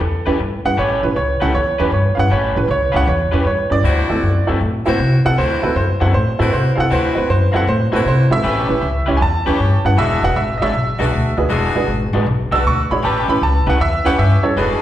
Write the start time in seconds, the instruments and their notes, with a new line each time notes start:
Already playing: upright piano A4
0.00 upright bass E2, muted clean electric guitar stroke
0.26 upright bass E2, clean electric guitar A3 C#4 G4 B4, honky-tonk piano C#4 E4 G4 B4
0.40 upright bass G2, muted clean electric guitar stroke
0.65 upright bass G2, honky-tonk piano C#4 E4 G4 B4, upright piano F#5, muted clean electric guitar stroke
0.77 upright bass A1, clean electric guitar A3 C#4 G4 B4, upright piano C#5
1.02 upright bass A1, honky-tonk piano C#4 E4 G4 B4, upright piano B4, muted clean electric guitar stroke
1.16 upright bass C#2, upright piano C#5, muted clean electric guitar stroke
1.40 upright bass C#2, clean electric guitar A3 C#4 G4 B4, honky-tonk piano C#4 E4 G4 A4, upright piano F#5
1.53 upright bass E2, upright piano C#5, muted clean electric guitar stroke
1.78 upright bass E2, clean electric guitar A3 C#4 G4 B4, honky-tonk piano C#4 E4 G4 B4, upright piano B4
1.92 upright bass G2, upright piano C#5, muted clean electric guitar stroke
2.15 upright bass G2, honky-tonk piano C#4 E4 G4 B4, upright piano F5, muted clean electric guitar stroke
2.19 upright piano F#5
2.30 upright bass A1, clean electric guitar A3 C#4 G4 B4, upright piano C#5
2.55 upright bass A1, honky-tonk piano C#4 E4 G4 B4, upright piano B4, muted clean electric guitar stroke
2.68 upright bass C#2, upright piano C#5, muted clean electric guitar stroke
2.92 upright bass C#2, clean electric guitar A3 C#4 G4 B4, honky-tonk piano C#4 E4 G4 C#5, upright piano F5
2.96 upright piano F#5
3.06 upright bass E2, upright piano C#5, muted clean electric guitar stroke
3.32 upright bass E2, clean electric guitar A3 C#4 G4 B4, honky-tonk piano C#4 E4 G4 B4, upright piano B4
3.45 upright bass G2, upright piano C#5, muted clean electric guitar stroke
3.70 upright bass G2, honky-tonk piano C#4 E4 G4 B4, upright piano D5, muted clean electric guitar stroke
3.83 upright bass D2, clean electric guitar D3 C4 E4 F#4, saxophone section E4 F#4 C5
4.09 upright bass D2, honky-tonk piano C4 E4 F#4 A4, muted clean electric guitar stroke
4.23 upright bass F#2, muted clean electric guitar stroke
4.47 upright bass F#2, clean electric guitar D3 C4 E4 F#4, honky-tonk piano C4 E4 F#4 A4
4.61 upright bass A2, muted clean electric guitar stroke
4.86 upright bass A2, clean electric guitar D3 C4 E4 F#4, honky-tonk piano C4 E4 F#4 B4, saxophone section E4 F#4 C5
4.99 upright bass C3, muted clean electric guitar stroke
5.25 upright bass C3, honky-tonk piano C4 E4 F#4 A4, upright piano F#5, muted clean electric guitar stroke
5.38 upright bass D2, clean electric guitar D3 C4 E4 F#4, saxophone section E4 F#4 C5, upright piano C5
5.63 upright bass D2, honky-tonk piano C4 E4 F#4 A4, upright piano B4, muted clean electric guitar stroke
5.75 upright bass F#2, upright piano C5, muted clean electric guitar stroke
6.00 upright bass F#2, clean electric guitar D3 C4 E4 F#4, honky-tonk piano C4 E4 F#4 A4, upright piano F#5
6.13 upright bass A2, upright piano C5, muted clean electric guitar stroke
6.39 upright bass A2, clean electric guitar D3 C4 E4 F#4, honky-tonk piano C4 E4 F#4 A4, saxophone section E4 F#4 C5, upright piano B4
6.52 upright bass C3, upright piano C5, muted clean electric guitar stroke
6.75 upright bass C3, honky-tonk piano C4 E4 F#4 A4, upright piano F5, muted clean electric guitar stroke
6.80 upright piano F#5
6.90 upright bass D2, clean electric guitar D3 C4 E4 F#4, saxophone section E4 F#4 B4, upright piano C5
7.15 upright bass D2, honky-tonk piano C4 E4 F#4 C5, upright piano B4, muted clean electric guitar stroke
7.28 upright bass F#2, upright piano C5, muted clean electric guitar stroke
7.52 upright bass F#2, clean electric guitar D3 C4 E4 F#4, honky-tonk piano C4 E4 F#4 A4, upright piano F5
7.56 upright piano F#5
7.67 upright bass A2, upright piano C5, muted clean electric guitar stroke
7.92 upright bass A2, clean electric guitar D3 C4 E4 F#4, honky-tonk piano C4 E4 F#4 A4, saxophone section E4 F#4 C5, upright piano B4
8.05 upright bass C3, upright piano C5, muted clean electric guitar stroke
8.31 upright bass G#1, honky-tonk piano C4 E4 F#4 A4, upright piano E5, muted clean electric guitar stroke
8.43 upright bass A1, clean electric guitar A3 C#4 G4 B4, saxophone section C#4 G4 B4
8.68 upright bass A1, honky-tonk piano C#4 E4 G4 B4, muted clean electric guitar stroke
8.81 upright bass C#2, muted clean electric guitar stroke
9.06 upright bass C#2, clean electric guitar A3 C#4 G4 B4, honky-tonk piano C#4 E4 G4 C#5
9.17 upright bass E2, upright piano G#5, muted clean electric guitar stroke
9.22 upright piano A5
9.46 upright bass E2, clean electric guitar A3 C#4 G4 B4, saxophone section C#4 G4 C#5, honky-tonk piano C#4 E4 G4 B4
9.60 upright bass G2, muted clean electric guitar stroke
9.85 upright bass G2, honky-tonk piano C#4 E4 G4 B4, upright piano F#5, muted clean electric guitar stroke
9.97 upright bass E1, clean electric guitar E3 G#3 D4 F#4, saxophone section D4 F#4 G#4, upright piano E5
10.23 upright bass E1, honky-tonk piano D4 F#4 G#4 B4, upright piano F#5, muted clean electric guitar stroke
10.36 upright bass G#1, upright piano E5, muted clean electric guitar stroke
10.58 honky-tonk piano D4 F#4 G#4, upright piano D#5
10.62 upright bass G#1, clean electric guitar E3 G#3 D4 F#4, honky-tonk piano C#5, upright piano E5
10.74 upright bass B1, muted clean electric guitar stroke
10.99 upright bass B1, clean electric guitar E3 G#3 D4 F#4, honky-tonk piano D4 F#4 G#4 B4, saxophone section D4 F#4 G#4
11.11 upright bass D2, muted clean electric guitar stroke
11.37 upright bass D2, honky-tonk piano D4 F#4 G#4 B4, muted clean electric guitar stroke
11.49 upright bass E1, clean electric guitar E3 G#3 D4 F#4, saxophone section D4 F#4 G#4
11.75 upright bass E1, honky-tonk piano D4 F#4 G#4 B4, muted clean electric guitar stroke
11.87 upright bass G#1, muted clean electric guitar stroke
12.13 upright bass G#1, clean electric guitar E3 G#3 D4 F#4, honky-tonk piano D4 F#4 G#4 B4
12.26 upright bass B1, muted clean electric guitar stroke
12.52 upright bass B1, clean electric guitar E3 G#3 D4 F#4, honky-tonk piano D4 F#4 G#4 B4, saxophone section D4 F#4 B4, upright piano E6
12.64 upright bass D2, upright piano C#6, muted clean electric guitar stroke
12.90 upright bass G#1, honky-tonk piano D4 F#4 G#4 C#5, upright piano B5, muted clean electric guitar stroke
13.03 upright bass A1, clean electric guitar A3 C#4 G4 B4, saxophone section C#4 G4 B4, upright piano A5
13.28 upright bass A1, honky-tonk piano C#4 E4 G4 B4, upright piano B5, muted clean electric guitar stroke
13.42 upright bass C#2, upright piano A5, muted clean electric guitar stroke
13.66 upright bass C#2, clean electric guitar A3 C#4 G4 B4, honky-tonk piano C#4 E4 G4 B4, upright piano F#5
13.80 upright bass E2, upright piano E5
14.04 upright bass E2, clean electric guitar A3 C#4 G4 B4, honky-tonk piano C#4 E4 G4 B4, saxophone section C#4 G4 B4, upright piano F#5
14.18 upright bass G2, upright piano E5, muted clean electric guitar stroke
14.43 upright bass G2, honky-tonk piano C#4 E4 G4 A4, upright piano C#5, muted clean electric guitar stroke
14.56 upright bass E1, clean electric guitar E3 G#3 D4 F#4, saxophone section D4 F#4 G#4, upright piano B4